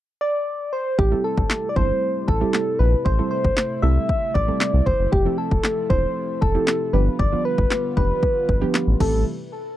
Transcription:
0.21 soft synth lead D5
0.73 soft synth lead C5
0.98 analog synth bass A1, analog synth pad C3 G3 A3 E4, soft synth lead G4, kick
1.11 synth pluck G3 C4 E4 A4
1.24 soft synth lead A4
1.38 analog synth bass A1, kick
1.50 snare, clap
1.69 soft synth lead D5
1.76 analog synth bass G1, synth pluck G3 C4 E4 A4, soft synth lead C5, kick
2.28 analog synth bass A1, soft synth lead A4, kick
2.41 synth pluck G3 C4 E4 G4
2.53 snare, clap
2.79 analog synth bass A#1, soft synth lead B4
3.05 analog synth bass A1, soft synth lead C5, kick
3.18 synth pluck G3 C4 E4 A4
3.31 soft synth lead C5
3.44 analog synth bass A1, kick
3.57 snare, clap
3.82 analog synth bass C2, synth pluck G3 C4 E4 A4, soft synth lead E5
4.09 kick
4.34 analog synth bass A1, soft synth lead D5, kick
4.48 synth pluck G3 C4 E4 A4
4.60 snare, clap
4.74 analog synth bass C2
4.86 analog synth bass G1, soft synth lead C5, kick
4.99 analog synth bass F#1
5.12 analog synth bass F1, analog synth pad F3, soft synth lead G4, kick
5.25 synth pluck F3 C4 E4 A4
5.38 soft synth lead A4
5.51 analog synth bass F1, kick
5.63 snare, clap
5.90 analog synth bass E1, synth pluck F3 C4 E4 A4, soft synth lead C5, kick
6.41 analog synth bass F1, soft synth lead A4, kick
6.54 synth pluck F3 C4 E4 G4
6.67 snare, clap
6.93 analog synth bass G1, analog synth pad D3 G3 B3 F4, synth pluck F3 B3 D4 G4, soft synth lead B4
7.19 analog synth bass G1, soft synth lead D5, kick
7.32 synth pluck F3 B3 D4 F4
7.45 soft synth lead B4
7.58 analog synth bass G1, kick
7.70 snare, clap
7.97 analog synth bass F1, synth pluck F3 B3 D4 G4, soft synth lead B4, kick
8.23 kick
8.49 analog synth bass G1, kick
8.61 synth pluck F3 B3 D4 G4
8.74 snare, clap
8.87 analog synth bass A1
9.00 analog synth bass A1, analog synth pad C3 G3 A3 E4, synth pluck E3 A3 C4 G4, soft synth lead A4, kick, crash

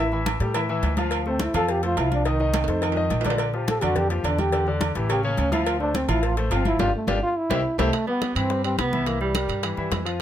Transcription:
Already playing: upright bass A1, trombone E4
0.00 grand piano E5
0.12 grand piano E3 E4 E5, high conga
0.26 cowbell, high conga, low agogo
0.40 upright bass A2, grand piano G3 G4 A4, cowbell, high conga
0.54 grand piano E3 E4 E5, cowbell, high conga, low agogo
0.69 grand piano E3 E4 E5, high conga
0.82 upright bass D2, cowbell, high conga, low timbale, low agogo
0.97 grand piano F3 F4 F5, cowbell, high conga, low agogo
1.11 cowbell, high conga, low agogo
1.26 grand piano A3 A4 C5, trombone C4, high conga
1.39 trombone E4, cowbell, high conga, low agogo
1.54 upright bass F2, grand piano F3 F4 F5, trombone A4, cowbell, low conga, low agogo
1.69 trombone G4, cowbell, high conga
1.83 grand piano A3 A4 C5, trombone F4, cowbell, high conga
1.97 upright bass C2, grand piano F3 F4 F5, trombone E4, cowbell, high conga, low timbale, low agogo
2.12 trombone D4, high conga, low agogo
2.25 grand piano D#3 D#4 D#5, trombone D#4, cowbell, high conga, low agogo
2.40 grand piano D#3 D#4 D#5, high conga
2.54 cowbell, high conga, high timbale, low agogo
2.64 upright bass F2, high timbale
2.68 grand piano A3 A4 C5, cowbell, high conga
2.82 grand piano D#3 D#4 D#5, cowbell, high conga, low agogo
2.92 low timbale
2.96 grand piano D#3 D#4 D#5, high conga
3.10 upright bass A#1, cowbell, high conga, low agogo
3.21 cowbell, low timbale
3.25 grand piano D3 D4 D5, high conga, low agogo
3.30 low timbale
3.38 cowbell, high conga, low agogo
3.54 grand piano F3 F4 G4, high conga
3.68 trombone A4, cowbell, high conga, low agogo
3.81 upright bass F2, grand piano D3 D4 D5, trombone F#4, cowbell, low conga, low agogo
3.96 trombone G4, cowbell, high conga, low conga
4.10 grand piano F3 F4 G4, trombone A#3, cowbell, high conga
4.24 upright bass E2, grand piano D3 D4 D5, trombone D4, cowbell, high conga, low agogo
4.39 trombone G4, high conga, low agogo
4.52 grand piano D3 D4 D5, cowbell, high conga, low agogo
4.67 grand piano D3 D4 D5, high conga
4.81 cowbell, high conga, low agogo
4.95 upright bass A1, grand piano E3 E4 G4, cowbell, high conga
5.09 grand piano C#3 C#4 C#5, trombone G4, cowbell, high conga, low agogo
5.24 grand piano C#3 C#4 C#5, trombone A#3, high conga
5.37 upright bass D2, trombone C#4, cowbell, high conga, low agogo
5.52 grand piano F3 F4 F5, trombone E4, cowbell, high conga, low agogo
5.66 trombone F4, cowbell, high conga, low agogo
5.80 grand piano A3 A4 C5, trombone D4, high conga
5.95 trombone C4, cowbell, high conga, low agogo
6.08 upright bass A1, grand piano F3 F4 F5, trombone E4, cowbell, low conga, low agogo
6.23 trombone F4, cowbell, high conga
6.37 grand piano A3 A4 C5, trombone A3, cowbell, high conga
6.51 upright bass G1, grand piano F3 F4 F5, trombone C4, cowbell, high conga, low timbale, low agogo
6.65 trombone E4, high conga, low agogo
6.79 upright bass G1, grand piano D4 F4 G4, trombone F4, cowbell, high conga, high timbale
6.96 trombone A3
7.07 upright bass G1, grand piano D4 F4 G4, trombone D4, cowbell, high conga, high timbale
7.23 trombone F4
7.38 trombone E4
7.50 upright bass C2, grand piano C4 E4 G4, cowbell, high conga, high timbale
7.78 upright bass C2, tenor saxophone A3, trombone A3, grand piano C4 E4 G4, cowbell, high conga, high timbale
7.93 high bongo, high conga, high timbale
8.07 grand piano G3 G4 B4, tenor saxophone B3, trombone B3, high conga
8.22 high bongo, high conga, high timbale
8.35 upright bass G2, grand piano E3 E4 E5, tenor saxophone C4, trombone C4, high conga, high timbale
8.50 grand piano G3 G4 B4, high bongo, high conga
8.64 grand piano G3 G4 B4, tenor saxophone C4, trombone C4, high conga, high timbale
8.78 upright bass C2, tenor saxophone B3, trombone B3, high bongo, low bongo, high conga, high timbale
8.93 grand piano E3 E4 E5, high conga
9.07 grand piano E3 E4 E5, tenor saxophone A#3, trombone A#3, high bongo, high timbale
9.21 tenor saxophone G3, trombone G3, high bongo, high conga
9.35 grand piano G3 G4 A#4, high bongo, high conga, high timbale
9.48 upright bass G2, high bongo, high conga, high timbale
9.63 grand piano E3 E4 E5, high bongo, high conga, high timbale
9.77 upright bass G2, grand piano E3 E4 E5, high bongo, high conga
9.91 upright bass F2, high bongo, low bongo, high conga, high timbale, low timbale
10.05 grand piano F3 F4 F5, high timbale

